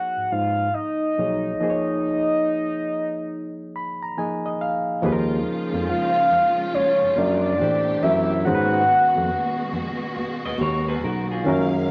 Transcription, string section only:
5.02 7.57 C#3 medium
5.02 7.57 F3 medium
5.02 7.57 G#3 medium
5.02 7.57 F4 medium
7.59 8.45 B2 medium
7.59 8.45 C3 medium
7.59 8.45 A3 medium
7.59 8.45 G4 medium
8.45 11.43 A#2 medium
8.45 11.43 B2 medium
8.45 11.42 G#3 medium
8.45 11.43 F#4 medium
11.45 11.91 C#3 medium
11.45 11.91 G#3 medium
11.45 11.91 A#3 medium
11.45 11.91 F5 medium

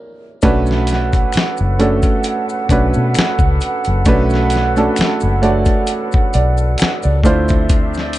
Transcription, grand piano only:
0.00 0.39 E3 medium
0.00 0.39 A#3 soft
0.00 0.39 D4 medium
0.00 0.45 A#4 medium
0.43 1.58 A3 loud
0.43 1.58 C#4 loud
0.43 1.58 D4 loud
0.43 1.59 F#4 loud
0.43 1.59 B4 loud
1.79 2.55 A3 medium
1.79 2.55 C#4 medium
1.79 2.55 D4 medium
1.79 2.55 F#4 medium
1.79 2.56 A4 medium
2.70 3.85 A3 medium
2.70 3.86 C#4 medium
2.70 3.86 D4 medium
2.70 3.86 F#4 medium
2.70 3.87 B4 loud
4.06 4.64 A3 loud
4.06 4.64 C#4 loud
4.06 4.64 D4 loud
4.06 4.65 F#4 loud
4.06 4.65 B4 loud
4.76 5.32 A3 medium
4.76 5.32 C#4 medium
4.76 5.33 D4 medium
4.76 5.33 F#4 medium
4.76 5.33 A4 loud
5.42 6.94 A3 medium
5.42 6.94 D4 medium
5.42 6.94 F#4 medium
5.42 6.94 C#5 medium
5.42 6.33 D5 loud
6.34 6.77 D5 medium
6.79 7.02 F#5 medium
7.04 7.47 D5 medium
7.24 8.19 A3 medium
7.24 8.19 D4 medium
7.24 8.19 E4 medium
7.24 8.19 F4 medium
7.24 8.19 C5 loud

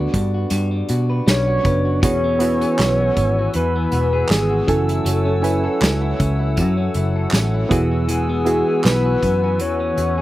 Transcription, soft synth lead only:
0.00 0.15 F#5 loud
1.30 2.00 C#5 loud
2.04 3.51 C#5 loud
3.56 4.32 B4 loud
4.30 4.70 G#4 medium
4.69 6.20 A4 medium
8.09 8.81 G#4 loud
8.85 9.62 B4 loud
9.61 10.22 C#5 loud

